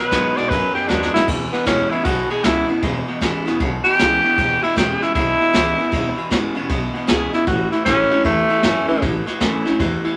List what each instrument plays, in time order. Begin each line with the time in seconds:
Already playing: steel-string acoustic guitar B2, tenor saxophone B4
0.00 clean electric guitar B2 F#3
0.11 upright bass D#2, clean electric guitar B2 G#3, steel-string acoustic guitar F#3 B3 D#4 F#4, kick, snare, ride
0.36 upright bass B1, clean electric guitar B2 G#3, steel-string acoustic guitar D#4 F#4, tenor saxophone D5, snare, ride
0.50 upright bass F#2, steel-string acoustic guitar F#2, clean electric guitar B2 F#3, tenor saxophone B4, kick, ride
0.74 clean electric guitar B2 F#3, tenor saxophone G4, muted upright bass stroke, ride
0.88 upright bass D#2, clean electric guitar B2 G#3, steel-string acoustic guitar F#3 B3 D#4 F#4, tenor saxophone D4, snare
1.02 snare
1.14 clean electric guitar B2 G#3, steel-string acoustic guitar D#4 F#4, tenor saxophone E4, muted upright bass stroke, snare
1.28 upright bass E1, steel-string acoustic guitar E2, clean electric guitar E2 B2, kick, snare, crash
1.53 clean electric guitar E2 B2, tenor saxophone B3, muted upright bass stroke, snare, ride
1.66 upright bass E1, clean electric guitar E2 C#3, steel-string acoustic guitar E3 G#3 B3 E4, tenor saxophone C#4, kick, snare, ride
1.90 clean electric guitar E2 C#3, steel-string acoustic guitar B3 E4, tenor saxophone E4, muted upright bass stroke, ride
2.05 upright bass B1, clean electric guitar E2 B2, steel-string acoustic guitar B2, tenor saxophone F#4, kick, ride
2.30 clean electric guitar E2 B2, tenor saxophone G#4, ride
2.44 upright bass C#2, clean electric guitar E2 C#3, steel-string acoustic guitar E3 G#3 B3 E4, tenor saxophone E4, snare, ride
2.68 clean electric guitar E2 C#3, steel-string acoustic guitar B3 E4, muted upright bass stroke, ride
2.83 upright bass E1, steel-string acoustic guitar E2, clean electric guitar E2 B2, kick, snare, ride
3.08 clean electric guitar E2 B2, ride
3.21 upright bass G#1, clean electric guitar E2 C#3, steel-string acoustic guitar E3 G#3 B3 E4, kick, snare, ride
3.46 upright bass E1, clean electric guitar E2 C#3, steel-string acoustic guitar B3 E4, snare, ride
3.60 upright bass B1, clean electric guitar E2 B2, steel-string acoustic guitar B2, kick, ride
3.84 clean electric guitar E2 B2, tenor saxophone G4, muted upright bass stroke, ride
3.99 upright bass C#2, clean electric guitar E2 C#3, steel-string acoustic guitar E3 G#3 B3 E4, snare, ride
4.24 clean electric guitar E2 C#3, steel-string acoustic guitar B3 E4, muted upright bass stroke, ride
4.38 upright bass E1, steel-string acoustic guitar E2, clean electric guitar E2 B2, kick, snare, ride
4.63 clean electric guitar E2 B2, tenor saxophone E4, muted upright bass stroke, ride
4.76 upright bass E1, clean electric guitar E2 C#3, steel-string acoustic guitar E3 G#3 B3 E4, tenor saxophone G4, kick, snare, ride
5.02 clean electric guitar E2 C#3, tenor saxophone E4, snare, ride
5.15 upright bass B1, clean electric guitar E2 B2, steel-string acoustic guitar B2, tenor saxophone E4, kick, ride
5.40 clean electric guitar E2 B2, ride
5.53 upright bass C#2, clean electric guitar C#3, steel-string acoustic guitar E3 G#3 B3 E4, snare, ride
5.78 clean electric guitar E2 C#3, steel-string acoustic guitar B3 E4, muted upright bass stroke, ride
5.92 upright bass E1, steel-string acoustic guitar E2, clean electric guitar E2 B2, kick, ride
6.17 clean electric guitar E2 B2, ride
6.31 upright bass G#1, clean electric guitar E2 C#3, steel-string acoustic guitar E3 G#3 B3 E4, kick, snare, ride
6.55 upright bass E1, clean electric guitar E2 C#3, steel-string acoustic guitar B3 E4, ride
6.69 upright bass B1, clean electric guitar E2 B2, steel-string acoustic guitar B2, kick, ride
6.94 clean electric guitar E2 B2, muted upright bass stroke, ride
7.07 upright bass C#2, clean electric guitar E2 C#3, steel-string acoustic guitar E3 G#3 B3 E4, tenor saxophone G#4, snare, ride
7.33 clean electric guitar E2 C#3, steel-string acoustic guitar B3 E4, tenor saxophone E4, muted upright bass stroke, snare, ride
7.47 upright bass A1, steel-string acoustic guitar A2, clean electric guitar A2 E3, tenor saxophone F#4, kick, snare, ride
7.71 clean electric guitar A2 E3, tenor saxophone E4, snare, ride
7.85 upright bass A1, clean electric guitar A2 F#3, steel-string acoustic guitar E3 A3 C#4 E4, tenor saxophone C#4, kick, snare, ride
8.11 clean electric guitar A2 F#3, steel-string acoustic guitar C#4 E4, muted upright bass stroke, ride
8.24 upright bass E2, steel-string acoustic guitar E2, clean electric guitar A2 E3, tenor saxophone A3, kick, ride
8.49 clean electric guitar A2 E3, ride
8.63 upright bass F#2, clean electric guitar A2 F#3, steel-string acoustic guitar E3 A3 C#4 E4, snare, ride
8.88 clean electric guitar A2 F#3, tenor saxophone E3, steel-string acoustic guitar C#4 E4, muted upright bass stroke, ride
9.02 upright bass A1, clean electric guitar A2 E3, steel-string acoustic guitar A2, kick, snare, ride
9.27 clean electric guitar A2 E3, muted upright bass stroke, snare, ride
9.40 upright bass C#2, clean electric guitar A2 F#3, steel-string acoustic guitar E3 A3 C#4 E4, kick, snare, ride
9.65 upright bass A1, clean electric guitar A2 F#3, steel-string acoustic guitar C#4 E4, snare, ride
9.79 upright bass E2, steel-string acoustic guitar E2, clean electric guitar A2 E3, kick, ride
10.04 clean electric guitar A2 E3, muted upright bass stroke, ride